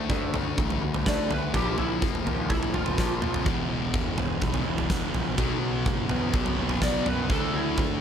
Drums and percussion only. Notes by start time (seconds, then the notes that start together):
0.10 kick, mid tom
0.34 floor tom, mid tom
0.58 kick, floor tom
0.70 floor tom
0.94 floor tom
1.06 kick, snare
1.31 floor tom
1.54 kick, floor tom
1.78 floor tom
2.02 kick
2.15 floor tom
2.27 floor tom
2.50 kick, floor tom
2.63 floor tom
2.74 floor tom
2.86 floor tom
2.98 kick, snare
3.22 mid tom
3.34 floor tom
3.46 kick, floor tom
3.94 kick, mid tom
4.18 floor tom, mid tom
4.42 kick, floor tom
4.54 floor tom
4.78 floor tom
4.90 kick, snare
5.14 floor tom
5.38 kick, floor tom
5.86 kick, mid tom
6.09 floor tom, mid tom
6.34 kick, floor tom
6.46 floor tom
6.69 floor tom
6.82 kick, snare
7.06 floor tom
7.30 kick, floor tom
7.78 kick, mid tom